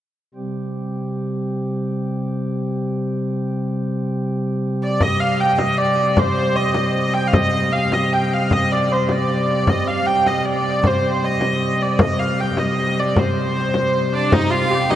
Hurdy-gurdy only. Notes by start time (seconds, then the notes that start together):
4.83 D5
5.02 D#5
5.20 F5
5.40 G5
5.59 D#5
5.78 D5
6.18 C5
6.56 D#5
6.75 D#5
7.14 G5
7.28 F5
7.34 D#5
7.72 F5
7.93 D#5
8.13 G5
8.33 F5
8.53 D#5
8.72 D5
8.92 C5
9.12 D5
9.50 D5
9.70 D#5
9.87 F5
10.06 G5
10.27 D#5
10.45 D5
10.87 C5
11.24 D#5
11.44 D#5
11.82 D5
12.01 D#5
12.19 F5
12.40 G5
12.58 D#5
12.99 D5
13.19 C5
14.13 D4
14.32 D#4
14.50 F4
14.70 G4
14.90 D#4